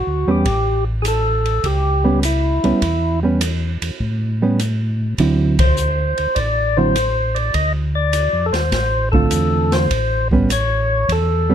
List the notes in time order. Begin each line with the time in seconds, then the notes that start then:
Already playing: F#4
0.07 D2
0.27 E2 G3 B3 C#4
0.31 G4
0.46 A1, kick, ride
1.02 G#4, hi-hat pedal, ride
1.08 A4
1.46 ride
1.64 C#2 G4, kick, ride
2.04 G3 B3 C#4
2.23 E4, hi-hat pedal, ride
2.64 C#2 G3 B3 C#4, ride
2.82 E2, kick, ride
3.23 G3 B3 C#4
3.41 hi-hat pedal, ride
3.82 E2, ride
4.00 A2, kick
4.42 G3 B3 C#4
4.59 hi-hat pedal, ride
5.18 D2 D3 F#3 C4 E4, kick, ride
5.59 C5, kick, ride
5.77 hi-hat pedal
6.18 D2, ride
6.35 A1 D5, kick, ride
6.77 D3 F#3 C4 E4 C5
6.96 hi-hat pedal, ride
7.35 D5, ride
7.54 D2 D#5, kick, ride
7.95 D5
8.13 hi-hat pedal, ride
8.33 F2
8.46 A4
8.53 D#2 C5, snare, ride
8.72 A1, kick, snare, ride
9.12 D3 A3 C4 F4 A4, kick
9.31 E2, hi-hat pedal, ride
9.72 C5, snare, ride
9.90 A1, kick, ride
10.31 G3 B3 C#4, kick
10.50 C#5, hi-hat pedal, ride
11.08 E2 A4, kick, ride
11.50 G3 B3 C#4